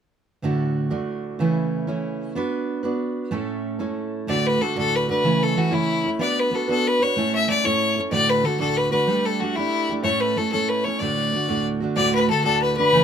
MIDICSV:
0, 0, Header, 1, 4, 480
1, 0, Start_track
1, 0, Key_signature, 2, "major"
1, 0, Tempo, 320856
1, 640, Time_signature, 6, 3, 24, 8
1, 19506, End_track
2, 0, Start_track
2, 0, Title_t, "Tin whistle"
2, 0, Program_c, 0, 75
2, 17911, Note_on_c, 0, 86, 68
2, 18155, Note_off_c, 0, 86, 0
2, 18161, Note_on_c, 0, 83, 57
2, 18378, Note_off_c, 0, 83, 0
2, 18387, Note_on_c, 0, 81, 68
2, 18611, Note_off_c, 0, 81, 0
2, 18632, Note_on_c, 0, 81, 76
2, 18885, Note_on_c, 0, 83, 77
2, 18907, Note_off_c, 0, 81, 0
2, 19108, Note_off_c, 0, 83, 0
2, 19117, Note_on_c, 0, 83, 62
2, 19506, Note_off_c, 0, 83, 0
2, 19506, End_track
3, 0, Start_track
3, 0, Title_t, "Fiddle"
3, 0, Program_c, 1, 110
3, 6420, Note_on_c, 1, 74, 72
3, 6674, Note_on_c, 1, 71, 80
3, 6697, Note_off_c, 1, 74, 0
3, 6899, Note_on_c, 1, 69, 70
3, 6922, Note_off_c, 1, 71, 0
3, 7128, Note_off_c, 1, 69, 0
3, 7145, Note_on_c, 1, 69, 89
3, 7411, Note_on_c, 1, 71, 79
3, 7434, Note_off_c, 1, 69, 0
3, 7622, Note_off_c, 1, 71, 0
3, 7631, Note_on_c, 1, 71, 81
3, 8121, Note_on_c, 1, 69, 76
3, 8143, Note_off_c, 1, 71, 0
3, 8344, Note_on_c, 1, 66, 77
3, 8367, Note_off_c, 1, 69, 0
3, 8572, Note_on_c, 1, 64, 94
3, 8595, Note_off_c, 1, 66, 0
3, 9115, Note_off_c, 1, 64, 0
3, 9294, Note_on_c, 1, 74, 74
3, 9562, Note_on_c, 1, 71, 75
3, 9584, Note_off_c, 1, 74, 0
3, 9799, Note_on_c, 1, 69, 75
3, 9822, Note_off_c, 1, 71, 0
3, 10013, Note_off_c, 1, 69, 0
3, 10022, Note_on_c, 1, 69, 82
3, 10276, Note_on_c, 1, 71, 85
3, 10298, Note_off_c, 1, 69, 0
3, 10501, Note_on_c, 1, 73, 80
3, 10523, Note_off_c, 1, 71, 0
3, 10986, Note_off_c, 1, 73, 0
3, 10996, Note_on_c, 1, 76, 93
3, 11203, Note_off_c, 1, 76, 0
3, 11210, Note_on_c, 1, 74, 84
3, 11431, Note_on_c, 1, 73, 86
3, 11453, Note_off_c, 1, 74, 0
3, 11983, Note_off_c, 1, 73, 0
3, 12140, Note_on_c, 1, 74, 92
3, 12404, Note_on_c, 1, 71, 82
3, 12426, Note_off_c, 1, 74, 0
3, 12642, Note_on_c, 1, 69, 85
3, 12665, Note_off_c, 1, 71, 0
3, 12850, Note_off_c, 1, 69, 0
3, 12859, Note_on_c, 1, 69, 80
3, 13117, Note_on_c, 1, 71, 87
3, 13139, Note_off_c, 1, 69, 0
3, 13331, Note_off_c, 1, 71, 0
3, 13340, Note_on_c, 1, 71, 86
3, 13839, Note_on_c, 1, 69, 75
3, 13861, Note_off_c, 1, 71, 0
3, 14063, Note_on_c, 1, 66, 73
3, 14085, Note_off_c, 1, 69, 0
3, 14290, Note_on_c, 1, 64, 93
3, 14313, Note_off_c, 1, 66, 0
3, 14852, Note_off_c, 1, 64, 0
3, 15016, Note_on_c, 1, 73, 78
3, 15269, Note_on_c, 1, 71, 72
3, 15291, Note_off_c, 1, 73, 0
3, 15519, Note_on_c, 1, 69, 81
3, 15541, Note_off_c, 1, 71, 0
3, 15725, Note_off_c, 1, 69, 0
3, 15734, Note_on_c, 1, 69, 84
3, 15989, Note_on_c, 1, 71, 71
3, 16012, Note_off_c, 1, 69, 0
3, 16217, Note_on_c, 1, 73, 77
3, 16239, Note_off_c, 1, 71, 0
3, 16443, Note_on_c, 1, 74, 74
3, 16466, Note_off_c, 1, 73, 0
3, 17440, Note_off_c, 1, 74, 0
3, 17893, Note_on_c, 1, 74, 83
3, 18146, Note_off_c, 1, 74, 0
3, 18175, Note_on_c, 1, 71, 74
3, 18391, Note_off_c, 1, 71, 0
3, 18401, Note_on_c, 1, 69, 81
3, 18602, Note_off_c, 1, 69, 0
3, 18611, Note_on_c, 1, 69, 81
3, 18865, Note_off_c, 1, 69, 0
3, 18872, Note_on_c, 1, 71, 71
3, 19090, Note_off_c, 1, 71, 0
3, 19099, Note_on_c, 1, 71, 92
3, 19506, Note_off_c, 1, 71, 0
3, 19506, End_track
4, 0, Start_track
4, 0, Title_t, "Steel-string acoustic guitar"
4, 0, Program_c, 2, 25
4, 634, Note_on_c, 2, 38, 54
4, 643, Note_on_c, 2, 45, 56
4, 655, Note_on_c, 2, 50, 68
4, 655, Note_on_c, 2, 57, 61
4, 659, Note_on_c, 2, 62, 69
4, 671, Note_on_c, 2, 66, 75
4, 1333, Note_off_c, 2, 66, 0
4, 1340, Note_off_c, 2, 62, 0
4, 1345, Note_off_c, 2, 57, 0
4, 1351, Note_on_c, 2, 66, 56
4, 1356, Note_off_c, 2, 45, 0
4, 1358, Note_off_c, 2, 50, 0
4, 1358, Note_on_c, 2, 62, 58
4, 1359, Note_off_c, 2, 38, 0
4, 1363, Note_on_c, 2, 57, 54
4, 1373, Note_on_c, 2, 45, 52
4, 1376, Note_on_c, 2, 50, 45
4, 1380, Note_on_c, 2, 38, 39
4, 2073, Note_off_c, 2, 45, 0
4, 2079, Note_off_c, 2, 66, 0
4, 2079, Note_on_c, 2, 49, 61
4, 2082, Note_off_c, 2, 62, 0
4, 2085, Note_off_c, 2, 57, 0
4, 2089, Note_off_c, 2, 50, 0
4, 2093, Note_off_c, 2, 38, 0
4, 2095, Note_on_c, 2, 52, 70
4, 2103, Note_on_c, 2, 57, 74
4, 2107, Note_on_c, 2, 61, 65
4, 2118, Note_on_c, 2, 64, 65
4, 2783, Note_off_c, 2, 64, 0
4, 2798, Note_off_c, 2, 61, 0
4, 2801, Note_off_c, 2, 57, 0
4, 2801, Note_on_c, 2, 64, 52
4, 2803, Note_off_c, 2, 49, 0
4, 2811, Note_off_c, 2, 52, 0
4, 2816, Note_on_c, 2, 61, 54
4, 2819, Note_on_c, 2, 57, 46
4, 2827, Note_on_c, 2, 52, 46
4, 2836, Note_on_c, 2, 49, 45
4, 3515, Note_off_c, 2, 52, 0
4, 3521, Note_on_c, 2, 59, 61
4, 3524, Note_off_c, 2, 64, 0
4, 3527, Note_off_c, 2, 57, 0
4, 3532, Note_off_c, 2, 61, 0
4, 3533, Note_on_c, 2, 62, 75
4, 3542, Note_off_c, 2, 49, 0
4, 3544, Note_on_c, 2, 66, 70
4, 3550, Note_on_c, 2, 71, 80
4, 4214, Note_off_c, 2, 71, 0
4, 4229, Note_off_c, 2, 66, 0
4, 4232, Note_on_c, 2, 71, 56
4, 4242, Note_off_c, 2, 62, 0
4, 4245, Note_off_c, 2, 59, 0
4, 4247, Note_on_c, 2, 66, 58
4, 4260, Note_on_c, 2, 62, 54
4, 4266, Note_on_c, 2, 59, 45
4, 4950, Note_on_c, 2, 45, 67
4, 4953, Note_off_c, 2, 59, 0
4, 4958, Note_on_c, 2, 57, 67
4, 4960, Note_off_c, 2, 62, 0
4, 4960, Note_off_c, 2, 71, 0
4, 4966, Note_on_c, 2, 61, 77
4, 4967, Note_off_c, 2, 66, 0
4, 4977, Note_on_c, 2, 64, 76
4, 4981, Note_on_c, 2, 69, 74
4, 5663, Note_off_c, 2, 64, 0
4, 5666, Note_off_c, 2, 61, 0
4, 5666, Note_off_c, 2, 69, 0
4, 5672, Note_on_c, 2, 69, 55
4, 5679, Note_off_c, 2, 45, 0
4, 5681, Note_on_c, 2, 64, 54
4, 5684, Note_on_c, 2, 61, 51
4, 5688, Note_off_c, 2, 57, 0
4, 5694, Note_on_c, 2, 57, 47
4, 5709, Note_on_c, 2, 45, 46
4, 6385, Note_off_c, 2, 45, 0
4, 6392, Note_on_c, 2, 38, 53
4, 6399, Note_off_c, 2, 69, 0
4, 6401, Note_off_c, 2, 57, 0
4, 6403, Note_on_c, 2, 45, 61
4, 6404, Note_off_c, 2, 64, 0
4, 6406, Note_off_c, 2, 61, 0
4, 6407, Note_on_c, 2, 50, 78
4, 6415, Note_on_c, 2, 62, 68
4, 6419, Note_on_c, 2, 57, 64
4, 6425, Note_on_c, 2, 66, 72
4, 6853, Note_off_c, 2, 50, 0
4, 6871, Note_on_c, 2, 50, 45
4, 6880, Note_off_c, 2, 62, 0
4, 6889, Note_off_c, 2, 38, 0
4, 6892, Note_off_c, 2, 57, 0
4, 6895, Note_off_c, 2, 45, 0
4, 6898, Note_on_c, 2, 62, 51
4, 6901, Note_off_c, 2, 66, 0
4, 6910, Note_on_c, 2, 57, 51
4, 6919, Note_on_c, 2, 66, 57
4, 7096, Note_off_c, 2, 57, 0
4, 7096, Note_off_c, 2, 66, 0
4, 7109, Note_off_c, 2, 62, 0
4, 7113, Note_on_c, 2, 66, 54
4, 7114, Note_off_c, 2, 50, 0
4, 7114, Note_on_c, 2, 57, 47
4, 7127, Note_on_c, 2, 62, 52
4, 7135, Note_on_c, 2, 50, 53
4, 7137, Note_on_c, 2, 45, 54
4, 7139, Note_on_c, 2, 38, 46
4, 7582, Note_off_c, 2, 66, 0
4, 7600, Note_on_c, 2, 66, 47
4, 7604, Note_off_c, 2, 57, 0
4, 7616, Note_off_c, 2, 62, 0
4, 7620, Note_off_c, 2, 50, 0
4, 7621, Note_off_c, 2, 45, 0
4, 7622, Note_off_c, 2, 38, 0
4, 7622, Note_on_c, 2, 57, 39
4, 7635, Note_on_c, 2, 62, 40
4, 7649, Note_on_c, 2, 50, 33
4, 7835, Note_on_c, 2, 49, 62
4, 7838, Note_off_c, 2, 66, 0
4, 7839, Note_off_c, 2, 57, 0
4, 7841, Note_off_c, 2, 50, 0
4, 7847, Note_on_c, 2, 52, 62
4, 7851, Note_off_c, 2, 62, 0
4, 7857, Note_on_c, 2, 57, 66
4, 7862, Note_on_c, 2, 61, 72
4, 7869, Note_on_c, 2, 64, 75
4, 8291, Note_off_c, 2, 52, 0
4, 8309, Note_on_c, 2, 52, 52
4, 8312, Note_off_c, 2, 57, 0
4, 8327, Note_off_c, 2, 61, 0
4, 8329, Note_off_c, 2, 49, 0
4, 8330, Note_on_c, 2, 57, 46
4, 8335, Note_off_c, 2, 64, 0
4, 8345, Note_on_c, 2, 61, 62
4, 8353, Note_on_c, 2, 64, 56
4, 8518, Note_off_c, 2, 64, 0
4, 8527, Note_off_c, 2, 61, 0
4, 8535, Note_off_c, 2, 57, 0
4, 8536, Note_on_c, 2, 64, 55
4, 8545, Note_on_c, 2, 61, 46
4, 8546, Note_off_c, 2, 52, 0
4, 8553, Note_on_c, 2, 57, 52
4, 8564, Note_on_c, 2, 52, 47
4, 8568, Note_on_c, 2, 49, 42
4, 9020, Note_off_c, 2, 64, 0
4, 9037, Note_on_c, 2, 64, 45
4, 9044, Note_off_c, 2, 61, 0
4, 9048, Note_off_c, 2, 57, 0
4, 9053, Note_off_c, 2, 52, 0
4, 9056, Note_off_c, 2, 49, 0
4, 9066, Note_on_c, 2, 61, 39
4, 9085, Note_on_c, 2, 57, 42
4, 9264, Note_on_c, 2, 59, 71
4, 9269, Note_off_c, 2, 57, 0
4, 9275, Note_on_c, 2, 62, 72
4, 9276, Note_off_c, 2, 64, 0
4, 9284, Note_off_c, 2, 61, 0
4, 9290, Note_on_c, 2, 66, 72
4, 9296, Note_on_c, 2, 71, 71
4, 9725, Note_off_c, 2, 59, 0
4, 9743, Note_on_c, 2, 59, 47
4, 9745, Note_off_c, 2, 62, 0
4, 9763, Note_on_c, 2, 62, 50
4, 9765, Note_off_c, 2, 66, 0
4, 9769, Note_off_c, 2, 71, 0
4, 9783, Note_on_c, 2, 66, 51
4, 9787, Note_on_c, 2, 71, 48
4, 9967, Note_off_c, 2, 71, 0
4, 9971, Note_off_c, 2, 66, 0
4, 9985, Note_on_c, 2, 71, 53
4, 9988, Note_off_c, 2, 59, 0
4, 9989, Note_on_c, 2, 66, 53
4, 9990, Note_off_c, 2, 62, 0
4, 10008, Note_on_c, 2, 62, 44
4, 10019, Note_on_c, 2, 59, 49
4, 10447, Note_off_c, 2, 71, 0
4, 10465, Note_on_c, 2, 71, 50
4, 10472, Note_off_c, 2, 66, 0
4, 10490, Note_on_c, 2, 66, 41
4, 10495, Note_off_c, 2, 62, 0
4, 10500, Note_off_c, 2, 59, 0
4, 10512, Note_on_c, 2, 62, 37
4, 10709, Note_off_c, 2, 71, 0
4, 10715, Note_on_c, 2, 45, 60
4, 10721, Note_off_c, 2, 66, 0
4, 10721, Note_on_c, 2, 57, 56
4, 10728, Note_off_c, 2, 62, 0
4, 10734, Note_on_c, 2, 61, 67
4, 10741, Note_on_c, 2, 64, 73
4, 10750, Note_on_c, 2, 69, 70
4, 11184, Note_off_c, 2, 57, 0
4, 11190, Note_on_c, 2, 57, 51
4, 11193, Note_off_c, 2, 61, 0
4, 11208, Note_off_c, 2, 45, 0
4, 11208, Note_off_c, 2, 64, 0
4, 11211, Note_on_c, 2, 61, 53
4, 11226, Note_on_c, 2, 64, 44
4, 11236, Note_off_c, 2, 69, 0
4, 11242, Note_on_c, 2, 69, 49
4, 11407, Note_off_c, 2, 69, 0
4, 11417, Note_off_c, 2, 64, 0
4, 11424, Note_on_c, 2, 69, 56
4, 11431, Note_off_c, 2, 57, 0
4, 11432, Note_off_c, 2, 61, 0
4, 11435, Note_on_c, 2, 64, 56
4, 11450, Note_on_c, 2, 61, 55
4, 11452, Note_on_c, 2, 57, 44
4, 11458, Note_on_c, 2, 45, 51
4, 11904, Note_off_c, 2, 69, 0
4, 11910, Note_on_c, 2, 69, 41
4, 11922, Note_off_c, 2, 64, 0
4, 11935, Note_off_c, 2, 61, 0
4, 11939, Note_off_c, 2, 45, 0
4, 11940, Note_on_c, 2, 64, 36
4, 11956, Note_on_c, 2, 61, 39
4, 12135, Note_on_c, 2, 38, 70
4, 12141, Note_on_c, 2, 45, 65
4, 12145, Note_off_c, 2, 57, 0
4, 12150, Note_on_c, 2, 50, 67
4, 12151, Note_off_c, 2, 69, 0
4, 12152, Note_off_c, 2, 61, 0
4, 12153, Note_off_c, 2, 64, 0
4, 12158, Note_on_c, 2, 62, 68
4, 12159, Note_on_c, 2, 57, 77
4, 12169, Note_on_c, 2, 66, 70
4, 12595, Note_off_c, 2, 50, 0
4, 12609, Note_off_c, 2, 62, 0
4, 12613, Note_on_c, 2, 50, 50
4, 12627, Note_on_c, 2, 62, 41
4, 12635, Note_off_c, 2, 57, 0
4, 12637, Note_off_c, 2, 38, 0
4, 12639, Note_off_c, 2, 66, 0
4, 12640, Note_off_c, 2, 45, 0
4, 12641, Note_on_c, 2, 57, 46
4, 12657, Note_on_c, 2, 66, 55
4, 12832, Note_off_c, 2, 66, 0
4, 12841, Note_off_c, 2, 57, 0
4, 12848, Note_off_c, 2, 62, 0
4, 12849, Note_off_c, 2, 50, 0
4, 12850, Note_on_c, 2, 66, 48
4, 12859, Note_on_c, 2, 57, 52
4, 12866, Note_on_c, 2, 62, 53
4, 12867, Note_on_c, 2, 50, 45
4, 12876, Note_on_c, 2, 45, 41
4, 12878, Note_on_c, 2, 38, 44
4, 13305, Note_off_c, 2, 66, 0
4, 13323, Note_on_c, 2, 66, 54
4, 13335, Note_off_c, 2, 57, 0
4, 13341, Note_on_c, 2, 57, 40
4, 13343, Note_off_c, 2, 62, 0
4, 13361, Note_on_c, 2, 62, 45
4, 13363, Note_off_c, 2, 50, 0
4, 13368, Note_off_c, 2, 38, 0
4, 13368, Note_off_c, 2, 45, 0
4, 13379, Note_on_c, 2, 50, 38
4, 13569, Note_off_c, 2, 50, 0
4, 13573, Note_off_c, 2, 62, 0
4, 13575, Note_on_c, 2, 55, 67
4, 13577, Note_off_c, 2, 66, 0
4, 13582, Note_off_c, 2, 57, 0
4, 13591, Note_on_c, 2, 62, 68
4, 13600, Note_on_c, 2, 57, 65
4, 13613, Note_on_c, 2, 67, 76
4, 14055, Note_off_c, 2, 55, 0
4, 14073, Note_on_c, 2, 55, 41
4, 14074, Note_off_c, 2, 62, 0
4, 14092, Note_on_c, 2, 62, 58
4, 14096, Note_off_c, 2, 67, 0
4, 14101, Note_off_c, 2, 57, 0
4, 14107, Note_on_c, 2, 57, 50
4, 14119, Note_on_c, 2, 67, 57
4, 14301, Note_off_c, 2, 67, 0
4, 14311, Note_off_c, 2, 55, 0
4, 14312, Note_off_c, 2, 57, 0
4, 14319, Note_on_c, 2, 67, 54
4, 14321, Note_off_c, 2, 62, 0
4, 14330, Note_on_c, 2, 57, 56
4, 14345, Note_on_c, 2, 62, 44
4, 14352, Note_on_c, 2, 55, 41
4, 14781, Note_off_c, 2, 67, 0
4, 14799, Note_on_c, 2, 67, 44
4, 14816, Note_off_c, 2, 57, 0
4, 14821, Note_off_c, 2, 62, 0
4, 14822, Note_on_c, 2, 57, 50
4, 14825, Note_off_c, 2, 55, 0
4, 14841, Note_on_c, 2, 62, 38
4, 15010, Note_off_c, 2, 57, 0
4, 15012, Note_on_c, 2, 45, 72
4, 15028, Note_off_c, 2, 62, 0
4, 15028, Note_on_c, 2, 57, 63
4, 15034, Note_off_c, 2, 67, 0
4, 15034, Note_on_c, 2, 61, 74
4, 15043, Note_on_c, 2, 64, 75
4, 15048, Note_on_c, 2, 69, 75
4, 15500, Note_off_c, 2, 57, 0
4, 15506, Note_off_c, 2, 61, 0
4, 15506, Note_on_c, 2, 57, 51
4, 15515, Note_off_c, 2, 45, 0
4, 15521, Note_off_c, 2, 64, 0
4, 15524, Note_on_c, 2, 61, 54
4, 15539, Note_on_c, 2, 64, 52
4, 15547, Note_off_c, 2, 69, 0
4, 15553, Note_on_c, 2, 69, 53
4, 15725, Note_off_c, 2, 69, 0
4, 15734, Note_off_c, 2, 64, 0
4, 15743, Note_on_c, 2, 69, 56
4, 15744, Note_off_c, 2, 61, 0
4, 15748, Note_off_c, 2, 57, 0
4, 15752, Note_on_c, 2, 64, 49
4, 15762, Note_on_c, 2, 61, 54
4, 15770, Note_on_c, 2, 57, 50
4, 15774, Note_on_c, 2, 45, 37
4, 16226, Note_off_c, 2, 69, 0
4, 16232, Note_on_c, 2, 69, 45
4, 16239, Note_off_c, 2, 64, 0
4, 16250, Note_off_c, 2, 61, 0
4, 16256, Note_off_c, 2, 45, 0
4, 16257, Note_on_c, 2, 64, 41
4, 16276, Note_on_c, 2, 61, 40
4, 16463, Note_on_c, 2, 38, 62
4, 16471, Note_off_c, 2, 69, 0
4, 16473, Note_off_c, 2, 57, 0
4, 16474, Note_on_c, 2, 45, 62
4, 16479, Note_off_c, 2, 61, 0
4, 16479, Note_on_c, 2, 50, 67
4, 16483, Note_off_c, 2, 64, 0
4, 16485, Note_on_c, 2, 62, 60
4, 16490, Note_on_c, 2, 57, 69
4, 16491, Note_on_c, 2, 66, 72
4, 16922, Note_off_c, 2, 50, 0
4, 16939, Note_on_c, 2, 50, 43
4, 16942, Note_off_c, 2, 62, 0
4, 16960, Note_off_c, 2, 38, 0
4, 16960, Note_on_c, 2, 62, 46
4, 16966, Note_off_c, 2, 45, 0
4, 16972, Note_off_c, 2, 57, 0
4, 16974, Note_off_c, 2, 66, 0
4, 16978, Note_on_c, 2, 57, 46
4, 16990, Note_on_c, 2, 66, 48
4, 17153, Note_off_c, 2, 66, 0
4, 17160, Note_off_c, 2, 57, 0
4, 17165, Note_off_c, 2, 62, 0
4, 17170, Note_on_c, 2, 66, 59
4, 17171, Note_off_c, 2, 50, 0
4, 17178, Note_on_c, 2, 57, 62
4, 17183, Note_on_c, 2, 62, 54
4, 17189, Note_on_c, 2, 50, 58
4, 17198, Note_on_c, 2, 45, 56
4, 17208, Note_on_c, 2, 38, 44
4, 17639, Note_off_c, 2, 66, 0
4, 17657, Note_on_c, 2, 66, 48
4, 17674, Note_off_c, 2, 57, 0
4, 17680, Note_off_c, 2, 62, 0
4, 17680, Note_on_c, 2, 57, 49
4, 17683, Note_off_c, 2, 50, 0
4, 17688, Note_off_c, 2, 45, 0
4, 17693, Note_off_c, 2, 38, 0
4, 17698, Note_on_c, 2, 62, 46
4, 17707, Note_on_c, 2, 50, 41
4, 17893, Note_off_c, 2, 62, 0
4, 17895, Note_off_c, 2, 50, 0
4, 17899, Note_on_c, 2, 38, 65
4, 17900, Note_on_c, 2, 45, 69
4, 17903, Note_off_c, 2, 66, 0
4, 17904, Note_off_c, 2, 57, 0
4, 17911, Note_on_c, 2, 62, 69
4, 17913, Note_on_c, 2, 50, 69
4, 17922, Note_on_c, 2, 57, 78
4, 17924, Note_on_c, 2, 66, 75
4, 18366, Note_off_c, 2, 50, 0
4, 18379, Note_off_c, 2, 62, 0
4, 18384, Note_on_c, 2, 50, 45
4, 18397, Note_on_c, 2, 62, 44
4, 18398, Note_off_c, 2, 38, 0
4, 18399, Note_off_c, 2, 45, 0
4, 18401, Note_off_c, 2, 57, 0
4, 18411, Note_off_c, 2, 66, 0
4, 18419, Note_on_c, 2, 57, 47
4, 18431, Note_on_c, 2, 66, 46
4, 18593, Note_off_c, 2, 66, 0
4, 18607, Note_off_c, 2, 57, 0
4, 18611, Note_on_c, 2, 66, 65
4, 18616, Note_off_c, 2, 62, 0
4, 18619, Note_off_c, 2, 50, 0
4, 18625, Note_on_c, 2, 57, 59
4, 18634, Note_on_c, 2, 62, 58
4, 18637, Note_on_c, 2, 50, 54
4, 18647, Note_on_c, 2, 45, 46
4, 18652, Note_on_c, 2, 38, 49
4, 19082, Note_off_c, 2, 66, 0
4, 19100, Note_on_c, 2, 66, 49
4, 19101, Note_off_c, 2, 57, 0
4, 19119, Note_off_c, 2, 62, 0
4, 19119, Note_on_c, 2, 57, 48
4, 19127, Note_off_c, 2, 50, 0
4, 19132, Note_off_c, 2, 45, 0
4, 19135, Note_off_c, 2, 38, 0
4, 19137, Note_on_c, 2, 62, 50
4, 19148, Note_on_c, 2, 50, 40
4, 19332, Note_off_c, 2, 57, 0
4, 19336, Note_off_c, 2, 50, 0
4, 19342, Note_on_c, 2, 49, 69
4, 19342, Note_on_c, 2, 52, 63
4, 19344, Note_off_c, 2, 62, 0
4, 19344, Note_off_c, 2, 66, 0
4, 19350, Note_on_c, 2, 57, 71
4, 19362, Note_on_c, 2, 61, 81
4, 19367, Note_on_c, 2, 64, 69
4, 19506, Note_off_c, 2, 49, 0
4, 19506, Note_off_c, 2, 52, 0
4, 19506, Note_off_c, 2, 57, 0
4, 19506, Note_off_c, 2, 61, 0
4, 19506, Note_off_c, 2, 64, 0
4, 19506, End_track
0, 0, End_of_file